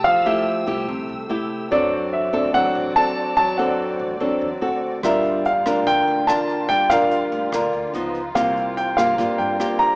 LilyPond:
<<
  \new Staff \with { instrumentName = "Grand piano" } { \time 4/4 \key d \minor \tempo 4 = 144 f''8 e''4. r2 | d''4 e''4 fis''4 a''4 | a''8 fis''4. r2 | e''4 f''4 g''4 a''4 |
g''8 f''4. r2 | f''4 g''8 f''4 g''4 bes''8 | }
  \new Staff \with { instrumentName = "Violin section" } { \time 4/4 \key d \minor << { e'''1 | d''1~ | d''2. d''4 | f'1~ |
f'1~ | f'1 | } \\ { <a g'>1 | <c' fis'>1~ | <c' fis'>1 | <bes g'>1~ |
<bes g'>2. <ees' ces''>4 | <c' bes'>1 | } >> }
  \new Staff \with { instrumentName = "Nylon-string guitar" } { \time 4/4 \key d \minor << { <a e' g'>8 <a e' g'>4 <a e' g'>4. <a e' g'>4 | <c' d' a'>4. <c' d' a'>8 <c' d' a'>4 <c' d' a'>4 | r8 <c' d' a'>4. <c' d' a'>8 r8 <c' fis' a'>4 | <d' f' bes'>4 r8 <d' f' bes'>4. <d' f' bes'>4~ |
<d' f' bes'>8 <d' f' bes'>4. <d' f' bes'>4 <f ces' ees'>8 r8 | <bes f' g'>4. <bes f' g'>8 <bes f' g'>4 <bes f' g'>4 | } \\ { f2 c2 | fis2 fis2 | fis2 fis4 r4 | g2 d2 |
g2 d4 r4 | c2 g,2 | } >> }
  \new Staff \with { instrumentName = "Upright bass" } { \clef bass \time 4/4 \key d \minor f,4. c,8 c,16 r16 c,8 r4 | fis,4. a,,8 a,,16 r16 a,,8 r4 | fis,4. a,,8 a,,16 r16 e,16 r16 d,4 | g,,4. d,8 d,16 r16 d,8 r4 |
g,,4. d,8 d,16 r16 d,16 r16 des,4 | c,4. g,8 g,16 r16 g,8 r4 | }
  \new DrumStaff \with { instrumentName = "Drums" } \drummode { \time 4/4 r4 r4 r4 r4 | r4 r4 r4 r4 | r4 r4 r4 r4 | <hh bd ss>8 hh8 hh8 <hh ss>8 <hh bd>8 hh8 <hh ss>8 hh8 |
<hh bd>8 ss8 hh8 hh8 <hh bd ss>8 hh8 hh8 hh8 | <hh bd ss>8 hh8 hh8 ss8 <hh bd>8 hh8 <hh ss>8 hh8 | }
>>